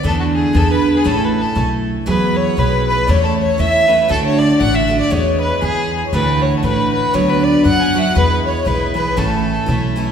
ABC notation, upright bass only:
X:1
M:2/4
L:1/8
Q:"Swing" 1/4=118
K:Emix
V:1 name="Upright bass" clef=bass
E,,2 E,,2 | A,,,2 B,,,2 | E,,2 B,,,2 | E,,2 E,,2 |
D,,2 A,,,2 | E,,2 E,,2 | D,,2 A,,,2 | D,,2 F,,2 |
E,,2 B,,,2 | A,,,2 B,,,2 |]